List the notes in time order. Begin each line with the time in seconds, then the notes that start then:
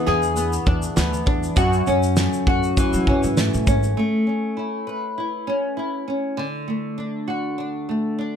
Already playing: E3 B3 D4
0.06 E2 G#4, snare
0.22 shaker
0.36 B3, shaker
0.53 shaker
0.66 E2 D4, kick
0.83 shaker
0.96 D2 B3, snare, shaker
1.14 shaker
1.26 E2 D4, kick
1.43 shaker
1.56 F#2 F#4, kick, shaker
1.73 shaker
1.87 F#2 C#4, shaker
2.03 shaker
2.17 A3, snare, shaker
2.33 shaker
2.47 F#2 F#4, kick
2.63 shaker
2.77 E3, kick, shaker
2.93 F#3, shaker
3.07 F#2 C#4, kick
3.23 G#2, shaker
3.37 A3, snare, shaker
3.54 A2, shaker
3.67 G#1 C#4, kick, shaker
3.83 shaker
3.97 A3
4.27 C#4
4.57 E4
4.87 B4
5.18 E4
5.47 C#4
5.77 E4
6.08 C#4
6.37 D3
6.68 A3
6.98 D4
7.28 F#4
7.58 D4
7.89 A3
8.19 D4